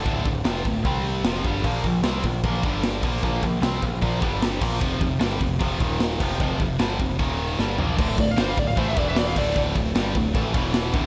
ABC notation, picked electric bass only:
X:1
M:4/4
L:1/8
Q:1/4=152
K:Dm
V:1 name="Picked electric bass" clef=bass
D,,, D,,, F,,, D,,, C,,2 F,,, G,,, | B,,, B,,, C,, B,,, B,,, G,,,2 B,,, | B,,, B,,, C,, B,,, B,,, G,,,2 B,,, | F,,, F,,, G,,, F,,, F,,, _E,,,2 F,,, |
F,,, F,,, G,,, F,,, _E,,,2 G,,, B,,, | D,,, D,,, G,,, D,,, A,,, E,,,2 D,,, | D,,, D,,, G,,, D,,, A,,, E,,,2 D,,, |]